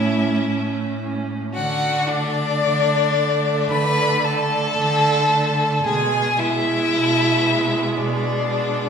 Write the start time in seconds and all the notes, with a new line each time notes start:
Already playing: A2 C#4 E4 E5
0.49 A2
1.02 C#4
1.54 D3 F#4 F#5
2.07 A3 D4 D5
2.64 D3
3.17 A3
3.70 D3 B4 B5
4.24 A3 A4 A5
4.78 D3
5.31 A3
5.84 B2 G#3 G#4 G#5
6.38 G#3 E4 E5
6.91 B2
7.45 G#3
7.97 B2 D4 D5
8.50 G#3